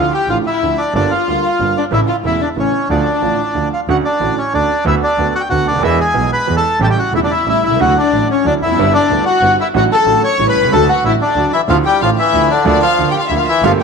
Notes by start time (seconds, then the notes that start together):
Already playing: D2 D3 F3 A3 E4 F4 F5
0.13 G4 G5
0.28 A1 A2 D3 F3 A3 E4 F4 F5
0.45 E4 E5
0.62 D2 D3 F3 A3 E4
0.78 D4 D5
0.94 G1 G2 D3 G3 A#3 D4 F4 D5
1.11 F4 F5
1.27 D2 D3 G3 A#3 F4
1.60 G1 G2 D3 G3 A#3 F4
1.77 D4 D5
1.91 A1 A2 C#3 E3 A3 E4 E5
2.07 F4 F5
2.24 E1 E2 C#3 E3 A3 E4 E5
2.40 D4 D5
2.56 A1 A2 C#3 E3 A3 C#4 E4 C#5
2.89 D2 D3 F3 A3 D4 F4 D5
3.21 A1 A2 D3 F3 A3 F4
3.54 D2 D3 F3 A3 F4
3.73 F4 F5
3.88 D2 D3 A3 C#4 F#4 F#5
4.05 D4 D5
4.20 A1 A2 D3 A3 C#4 F#4
4.38 C#4 C#5
4.53 D2 D3 A3 C#4 D4 F#4 D5
4.85 D2 D3 A3 B3 E4 F#4 E5
5.03 D4 D5
5.17 D2 D3 A3 B3 F#4
5.35 F#4 F#5
5.40 G5
5.50 D2 D3 A3 B3 F#4 F#5
5.66 D2 D4 D5
5.71 C#2 D2
5.78 D#2 E2
5.82 E2 E3 G#3 B3 E4 G#4 E5
6.00 G#4 G#5
6.14 B1 B2 E3 G#3 B3 G#4
6.32 B4 B5
6.47 E2 E3 G#3 B3 G#4
6.56 A4 A5
6.80 A1 A2 C#3 G3 A3 E4 G4 G5
6.84 A5
6.90 G4 G5
6.98 F#4 F#5
7.12 E1 E2 C#3 G3 A3 E4
7.16 E4 E5
7.23 D4 D5
7.30 E4 E5
7.46 A1 A2 C#3 G3 A3 E4 E5
7.63 C2 E4 E5
7.67 B1 C2
7.77 C#2 D2 D3 F#3 F#4
7.81 A3 E4 F#4 F#5
7.97 D4 D5
8.12 A1 A2 D3 F#3 A3 E4
8.31 C#4 C#5
8.44 D2 D3 F#3 A3 D4 E4 D5
8.61 F1 E4 E5
8.65 E2
8.70 F2
8.75 G1 F#2
8.79 G1 G2 D3 G3 B3 E4
8.93 D4 D5
9.09 D2 D3 G3 B3 E4
9.25 F#4 F#5
9.41 G1 G2 D3 G3 B3 E4
9.60 E4 E5
9.74 A1 A2 D3 F#3 A3 F#4 F#5
9.92 A4 A5
10.06 A1 A2 D3 F#3 A3 F#4
10.24 C#5 C#6
10.39 A1 A2 C#3 G3 A3 E4
10.49 B4 B5
10.55 C2
10.61 B1 C2
10.70 C#2 D2 D3 F#3 A3 A4
10.74 F#4 A4 A5
10.89 F#4 F#5
11.04 A1 A2 D3 F#3 A3 E4 F#4 E5
11.08 E4
11.21 D4 D5
11.35 D2 D3 F#3 A3 F#4
11.53 E3 E4 E5
11.68 D2 D3 F3 A3 E4 F4 F5
11.85 G3 G4 G5
12.01 A1 A2 D3 F3 A3 E4 F4 F5
12.17 E3 E4 E5
12.33 D2 D3 F3 A3 E4
12.50 D3 D4 D5
12.65 D2 D3 F3 A#3 D4 F4 D5
12.82 F3 F4 F5
12.98 D2 D3 F3 A#3 F4
13.11 G4 G5
13.19 F4 F5
13.27 D2 D3 F3 A#3 E4 F4 E5
13.37 F4 F5
13.47 E3 E4 E5
13.62 G1 G2 D3 F3 A3 A#3 F4 G4 F5